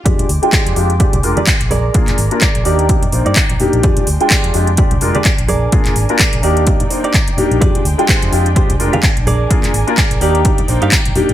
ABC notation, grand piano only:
X:1
M:4/4
L:1/16
Q:"Swing 16ths" 1/4=127
K:Fdor
V:1 name="Grand piano"
[A,DFG]2 z [A,DFg]3 [A,DFG] z [A,DFG] z [A,DFB] z4 z | [B,DFA]2 z [B,DFB] z2 [B,DEG]2 [B,DEG] z [B,DEc]2 z2 [B,DEG]2 | [A,F]2 z [A,DFg]3 [A,DFG] z [A,DFG] z [A,DFB] z4 z | [B,DFA]2 z [B,DFB] z2 [B,DEG]2 [B,DE] z [B,DEc]2 z2 [B,DEG]2 |
[A,DFG]2 z [A,DFg]3 [A,DFG] z [A,DFG] z [A,DFB] z4 z | [B,DFA]2 z [B,DFB] z2 [B,DEG]2 [DE] z [B,DEc]2 z2 [B,DEG]2 |]